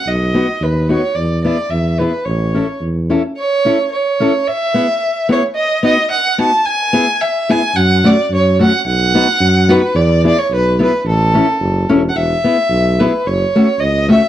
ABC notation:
X:1
M:2/4
L:1/16
Q:"Swing" 1/4=109
K:A
V:1 name="Fiddle"
^d4 B2 c2 | d2 d2 e2 B2 | c4 z4 | c4 c4 |
e6 c2 | ^d2 d2 f2 a2 | g4 e2 g2 | f2 d2 c2 f2 |
f6 B2 | d2 d c B2 B2 | A6 z3/2 f/2 | [K:E] e6 B2 |
c4 d2 e2 |]
V:2 name="Steel-string acoustic guitar"
z2 [B,^DF]2 z2 [B,DF]2 | z2 [B,EG]2 z2 [B,EG]2 | z2 [CEA]2 z2 [CEA]2 | z2 [CEA]2 z2 [CEA]2 |
z2 [B,EG]2 z2 [B,EG]2 | z2 [B,^DF]2 z2 [B,DF]2 | z2 [B,EG]2 z2 [B,EG]2 | z2 [A,CF]2 z2 [A,CF]2 |
z2 [B,^DF]2 z2 [B,DF]2 | z2 [B,EG]2 z2 [B,EG]2 | z2 [CEA]2 z2 [CEA]2 | [K:E] z2 [B,EG]2 z2 [B,EG]2 |
z2 [A,CF]2 z2 [A,CF]2 |]
V:3 name="Tuba" clef=bass
B,,,4 ^D,,4 | E,,4 E,,4 | A,,,4 E,,4 | z8 |
z8 | z8 | z8 | F,,4 F,,4 |
B,,,4 F,,4 | E,,4 B,,,4 | A,,,4 F,,,2 E,,,2 | [K:E] E,,,2 z2 B,,,4 |
F,,,2 z2 C,,4 |]